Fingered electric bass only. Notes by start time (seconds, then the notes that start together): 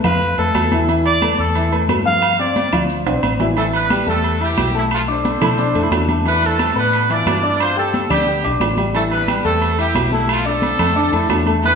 0.04 F2
0.38 F2
0.55 E2
1.39 E2
1.88 G2
2.73 D2
3.06 B1
3.23 A1
4.07 E2
4.57 B1
5.41 B2
5.75 F2
5.91 E2
6.76 A2
7.26 G2
8.11 D2
8.45 B1
8.60 A1
9.45 E2
9.95 B1
10.79 F2
11.13 F2
11.30 E2